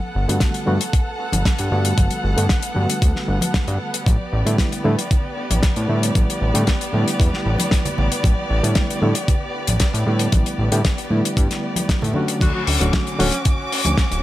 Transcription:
Already playing: violin section B3 A4 F#5
0.15 analog synth bass G1
0.28 analog synth bass G2, reed electric piano D3 G3 A3 B3 F#4, closed hi-hat
0.40 kick, snare, closed hi-hat
0.54 closed hi-hat
0.66 analog synth bass G2, reed electric piano D3 G3 A3 B3 F#4, high conga
0.81 closed hi-hat
0.93 kick, closed hi-hat
1.32 analog synth bass G1, closed hi-hat, high conga
1.45 kick, snare, closed hi-hat
1.58 analog synth bass G2, closed hi-hat
1.71 analog synth bass G2, reed electric piano D3 G3 A3 B3 F#4
1.85 closed hi-hat
1.98 analog synth bass G1, kick, closed hi-hat, high conga
2.11 closed hi-hat
2.24 analog synth bass G1
2.37 analog synth bass G2, reed electric piano D3 G3 A3 B3 A4, closed hi-hat
2.49 kick, snare, closed hi-hat
2.62 closed hi-hat
2.74 analog synth bass G2, reed electric piano D3 G3 A3 B3 F#4, high conga
2.90 closed hi-hat
3.02 analog synth bass D2, kick, closed hi-hat
3.16 snare
3.28 analog synth bass G1
3.41 closed hi-hat, high conga
3.54 kick, snare, closed hi-hat
3.68 analog synth bass G2, closed hi-hat
3.94 closed hi-hat
4.06 analog synth bass A1, violin section G4 D5, kick, closed hi-hat, high conga
4.33 analog synth bass A1
4.45 analog synth bass A2, reed electric piano D3 G3 A3 B3 E4, closed hi-hat
4.58 kick, snare, closed hi-hat
4.72 closed hi-hat
4.84 analog synth bass A2, reed electric piano D3 G3 A3 B3 E4, high conga
4.99 closed hi-hat
5.11 kick, closed hi-hat, low conga
5.50 analog synth bass A1, closed hi-hat, high conga
5.63 kick, snare, closed hi-hat
5.76 analog synth bass A2, closed hi-hat
5.88 analog synth bass A2, reed electric piano D3 G3 A3 B3 E4
6.03 closed hi-hat
6.15 analog synth bass A1, kick, closed hi-hat, high conga
6.30 closed hi-hat
6.41 analog synth bass A1
6.54 analog synth bass A2, reed electric piano D3 G3 A3 B3 G4, closed hi-hat
6.67 kick, snare, closed hi-hat
6.81 closed hi-hat
6.92 analog synth bass A2, reed electric piano D3 G3 A3 B3 E4, high conga
7.08 closed hi-hat
7.20 analog synth bass E2, kick, closed hi-hat
7.34 snare
7.46 analog synth bass A1
7.58 closed hi-hat, high conga
7.71 kick, snare, closed hi-hat
7.85 closed hi-hat, low conga
7.98 analog synth bass A1, low conga
8.12 closed hi-hat
8.24 analog synth bass A1, kick, closed hi-hat, high conga
8.50 analog synth bass A1
8.63 analog synth bass A2, reed electric piano D3 G3 A3 B3 E4, closed hi-hat
8.75 kick, snare, closed hi-hat
8.90 closed hi-hat
9.02 analog synth bass A2, reed electric piano D3 G3 A3 B3 E4, high conga
9.15 closed hi-hat
9.28 kick, closed hi-hat, low conga
9.67 analog synth bass A1, closed hi-hat, high conga
9.80 kick, snare, closed hi-hat
9.94 analog synth bass A2, closed hi-hat
10.06 analog synth bass A2, reed electric piano D3 G3 A3 B3 E4
10.19 closed hi-hat
10.32 analog synth bass A1, kick, closed hi-hat, high conga
10.46 closed hi-hat
10.59 analog synth bass A1
10.71 analog synth bass A2, reed electric piano D3 G3 A3 B3 G4, closed hi-hat
10.85 kick, snare, closed hi-hat
10.98 closed hi-hat
11.10 analog synth bass A2, reed electric piano D3 G3 A3 B3 E4, high conga
11.25 closed hi-hat
11.37 analog synth bass G2, kick, closed hi-hat
11.51 snare, closed hi-hat
11.76 closed hi-hat, high conga
11.89 kick, snare, closed hi-hat
12.02 analog synth bass A2, closed hi-hat, low conga
12.14 reed electric piano D3 F#3 A3 C#4 F#4, low conga
12.28 closed hi-hat
12.41 analog synth bass D2, violin section C#4 F#4 D6, tenor saxophone F#4, kick, closed hi-hat, crash, high conga
12.54 tenor saxophone F#4
12.67 analog synth bass D2, open hi-hat
12.80 analog synth bass D1, reed electric piano D3 F#3 A3 C#4 F#4, closed hi-hat
12.93 kick, snare, closed hi-hat
13.07 closed hi-hat
13.19 analog synth bass D1, reed electric piano D3 F#3 A3 C#4 F#4, tenor saxophone C#4, open hi-hat, high conga
13.32 closed hi-hat
13.45 kick, closed hi-hat, low conga
13.72 open hi-hat
13.85 analog synth bass D2, closed hi-hat, high conga
13.98 kick, snare, closed hi-hat
14.11 analog synth bass D1, closed hi-hat

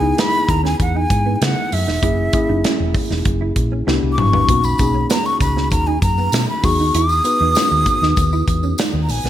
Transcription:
Already playing: fingered electric bass C#2, tine electric piano B3 D#4 E4 G#4, flute G#5
0.02 clean electric guitar D#4
0.18 clean electric guitar B3, flute B5, snare, closed hi-hat
0.49 fingered electric bass D#2, flute A#5, muted clean electric guitar stroke, kick, closed hi-hat
0.64 clean electric guitar C#4, flute G#5, snare
0.80 fingered electric bass E2, flute F#5, kick, closed hi-hat
0.95 clean electric guitar D#4, flute G#5
1.10 fingered electric bass G#2, muted clean electric guitar stroke, kick, closed hi-hat
1.26 clean electric guitar B3
1.36 flute G#5
1.41 fingered electric bass C#3, clean electric guitar C#4, flute F#5, snare, closed hi-hat
1.72 fingered electric bass F#2, flute E5, muted clean electric guitar stroke, open hi-hat
1.87 fingered electric bass E1, clean electric guitar D#4, snare
2.02 fingered electric bass F#1, tine electric piano A#3 C#4 E4 G#4, clean electric guitar E4, kick, closed hi-hat
2.33 tine electric piano A#3 C#4 E4 G#4, muted clean electric guitar stroke, kick, closed hi-hat
2.49 fingered electric bass F#1, clean electric guitar D#4
2.64 clean electric guitar C#4, snare, closed hi-hat
2.80 fingered electric bass E1
2.94 muted clean electric guitar stroke, kick, open hi-hat
3.10 fingered electric bass E1, clean electric guitar D#4, snare
3.25 fingered electric bass F#1, kick, closed hi-hat
3.41 clean electric guitar E4
3.56 fingered electric bass A#1, muted clean electric guitar stroke, kick, closed hi-hat
3.72 clean electric guitar C#4
3.87 fingered electric bass C2, tine electric piano B3 D4 E4 G4, clean electric guitar E4, snare
4.03 fingered electric bass C2, muted clean electric guitar stroke
4.12 flute D6
4.18 fingered electric bass G1, flute C#6, mid tom
4.33 fingered electric bass A1, clean electric guitar B3, floor tom
4.48 fingered electric bass B1, tine electric piano A#3 C#4 D#4 F#4, clean electric guitar B3, kick, closed hi-hat
4.64 flute B5, tambourine
4.78 fingered electric bass B1, tine electric piano A#3 C#4 D#4 G#4, muted clean electric guitar stroke, kick, closed hi-hat, tambourine
4.94 clean electric guitar C#4
5.10 clean electric guitar B3, flute A#5, snare, closed hi-hat, tambourine
5.25 flute C#6, tambourine
5.40 fingered electric bass C#2, flute B5, muted clean electric guitar stroke, kick, closed hi-hat, tambourine
5.56 clean electric guitar C#4, snare
5.70 fingered electric bass D#2, flute A#5, kick, closed hi-hat, tambourine
5.87 clean electric guitar D#4, flute G#5
6.02 fingered electric bass F#2, flute A#5, muted clean electric guitar stroke, kick, closed hi-hat, tambourine
6.18 clean electric guitar B3, tambourine
6.32 fingered electric bass B2, clean electric guitar C#4, snare, closed hi-hat, tambourine
6.49 flute B5
6.63 fingered electric bass E2, tine electric piano B3 D#4 F#4 G#4, flute C#6, muted clean electric guitar stroke, kick, open hi-hat, tambourine
6.78 fingered electric bass D#2, clean electric guitar D#4, tambourine
6.95 fingered electric bass E2, clean electric guitar E4, flute D#6, closed hi-hat
7.09 tambourine
7.24 tine electric piano B3 D#4 F#4 B4, muted clean electric guitar stroke, closed hi-hat, tambourine
7.41 fingered electric bass E2, clean electric guitar D#4
7.55 clean electric guitar C#4, snare, closed hi-hat, tambourine
7.71 fingered electric bass D#2, tambourine
7.86 muted clean electric guitar stroke, kick, closed hi-hat, tambourine
8.02 fingered electric bass D#2, clean electric guitar D#4, snare
8.16 fingered electric bass D#2, kick, closed hi-hat, tambourine
8.33 clean electric guitar E4, tambourine
8.47 fingered electric bass E2, muted clean electric guitar stroke, kick, closed hi-hat, tambourine
8.63 clean electric guitar C#4, tambourine
8.78 clean electric guitar D#4, snare, closed hi-hat, tambourine
8.94 fingered electric bass D#2, muted clean electric guitar stroke
9.03 flute A#5
9.09 fingered electric bass A#1, flute G#5, open hi-hat, tambourine
9.24 fingered electric bass B1, clean electric guitar B3, snare

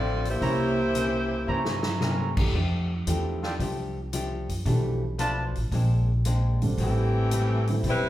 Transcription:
Already playing: upright bass A1, hollow-body jazz guitar D3 F3 C4 E4, saxophone section C4 F4 A4 D5
0.25 saxophone section E4 G4 C5, open hi-hat
0.29 saxophone section A#3
0.41 upright bass C2, hollow-body jazz guitar C3 E3 A#3 C#4, grand piano A#3 C#4 E4 G4, trumpet section E4 C5 C#5 A#5, kick, open hi-hat
0.95 hollow-body jazz guitar C3 E3 A#3 C#4, closed hi-hat
1.47 upright bass G2, hollow-body jazz guitar C3 E3 A#3 C#4, trumpet section E4 C5 C#5 A#5
1.65 snare
1.83 snare
2.01 hollow-body jazz guitar C3 E3 A#3 C#4, snare
2.37 grand piano E3 A3 D4 G4, kick, crash
2.53 upright bass F2, hollow-body jazz guitar F3 A3 D4 G4, kick
3.07 upright bass E2, grand piano E3 A3 D4 G4, hollow-body jazz guitar F3 A3 D4 G4, closed hi-hat
3.43 trumpet section F4 A4 D5 G5, snare
3.60 upright bass C2, hollow-body jazz guitar F3 A3 D4 G4, kick, open hi-hat
4.13 hollow-body jazz guitar F3 A3 D4 G4, closed hi-hat
4.49 upright bass F#2, open hi-hat
4.65 upright bass B1, hollow-body jazz guitar B2 F3 A3 D4, grand piano E3 A3 D4 G4, kick, open hi-hat
5.19 hollow-body jazz guitar B2 F3 A3 D4, trumpet section F4 B4 D5 A5, closed hi-hat
5.55 upright bass A1, open hi-hat
5.72 upright bass A#1, hollow-body jazz guitar A#2 G#3 C4 D4, kick, open hi-hat
6.25 hollow-body jazz guitar A#2 G#3 C4 D4, closed hi-hat
6.62 upright bass G#1, grand piano D3 G3 C4 D4, open hi-hat
6.78 upright bass A1, hollow-body jazz guitar A2 G3 C4 E4, saxophone section E3 A3 C4 G4, kick, open hi-hat
7.31 hollow-body jazz guitar A2 G3 C4 E4, closed hi-hat
7.67 grand piano D3 G3 C4 E4, open hi-hat
7.84 upright bass E1, hollow-body jazz guitar A2 G3 C4, kick, open hi-hat
7.88 saxophone section G3 C4 E4 B4, hollow-body jazz guitar E4

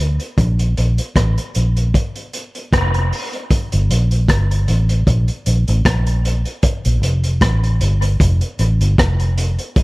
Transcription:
Already playing: fingered electric bass D2
0.20 closed hi-hat
0.38 fingered electric bass A#1, kick, closed hi-hat
0.59 closed hi-hat
0.77 fingered electric bass A#1, closed hi-hat
0.98 closed hi-hat
1.16 fingered electric bass A1, kick, cross-stick, closed hi-hat
1.38 closed hi-hat
1.55 fingered electric bass A#1, closed hi-hat
1.77 closed hi-hat
1.94 kick, closed hi-hat
2.16 closed hi-hat
2.33 closed hi-hat
2.55 closed hi-hat
2.73 fingered electric bass F1, kick, cross-stick, closed hi-hat
2.94 closed hi-hat
3.13 open hi-hat
3.33 closed hi-hat
3.51 kick, closed hi-hat
3.72 fingered electric bass G1, closed hi-hat
3.90 fingered electric bass A#1, closed hi-hat
4.11 closed hi-hat
4.28 fingered electric bass G1, kick, cross-stick, closed hi-hat
4.51 closed hi-hat
4.68 fingered electric bass A1, closed hi-hat
4.89 closed hi-hat
5.07 fingered electric bass A#1, kick, closed hi-hat
5.28 closed hi-hat
5.46 fingered electric bass A#1, closed hi-hat
5.68 fingered electric bass A1, closed hi-hat
5.85 fingered electric bass A#1, kick, cross-stick, closed hi-hat
6.07 closed hi-hat
6.25 closed hi-hat
6.45 closed hi-hat
6.63 kick, closed hi-hat
6.85 fingered electric bass A#1, closed hi-hat
7.03 fingered electric bass F1, closed hi-hat
7.24 closed hi-hat
7.41 fingered electric bass A1, kick, cross-stick, closed hi-hat
7.64 closed hi-hat
7.81 fingered electric bass G1, closed hi-hat
8.02 closed hi-hat
8.20 fingered electric bass F1, kick, closed hi-hat
8.41 closed hi-hat
8.59 fingered electric bass A1, closed hi-hat
8.81 fingered electric bass G1, closed hi-hat
8.98 fingered electric bass F1, kick, cross-stick, closed hi-hat
9.20 closed hi-hat
9.38 closed hi-hat
9.59 closed hi-hat
9.76 kick, closed hi-hat

